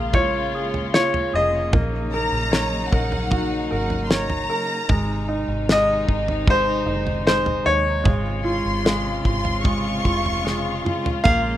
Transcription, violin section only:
2.12 2.88 A#5 loud
2.91 3.71 F#5 medium
3.72 4.02 F#5 medium
4.04 4.11 C6 medium
4.11 5.49 A#5 medium
8.44 9.20 C6 medium
9.24 9.61 C6 loud
9.64 11.04 C#6 medium

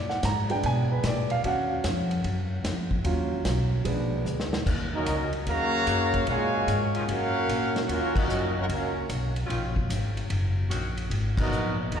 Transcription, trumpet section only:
4.95 5.31 C#4 medium
4.95 5.31 F#4 medium
4.95 5.31 A#4 medium
4.95 5.31 D#5 loud
5.48 6.24 F#4 loud
5.48 6.24 C#5 loud
5.48 6.24 F5 loud
5.48 6.24 A#5 loud
6.29 6.95 F#4 medium
6.29 6.95 C#5 loud
6.29 6.95 F5 medium
6.29 6.95 G#5 loud
7.11 7.86 C#4 loud
7.11 7.86 A#4 loud
7.11 7.86 F5 loud
7.11 7.86 F#5 loud
7.92 8.17 C#4 medium
7.92 8.17 F#4 medium
7.92 8.17 A#4 medium
7.92 8.17 F5 medium
8.19 8.57 C#4 medium
8.19 8.57 F#4 medium
8.19 8.57 A#4 medium
8.19 8.57 D#5 medium
8.60 8.65 C#4 medium
8.60 8.65 F4 medium
8.60 8.65 A#4 medium
8.60 8.65 F#5 loud
8.73 9.09 C#4 medium
8.73 9.09 F#4 medium
8.73 9.09 A#4 medium
8.73 9.09 F5 medium
11.42 11.77 B3 medium
11.42 11.77 F#4 medium
11.42 11.77 A#4 medium
11.42 11.77 D#5 loud
11.95 12.00 F#4 loud
11.95 12.00 B4 loud
11.95 12.00 D#5 loud
11.95 12.00 A#5 loud

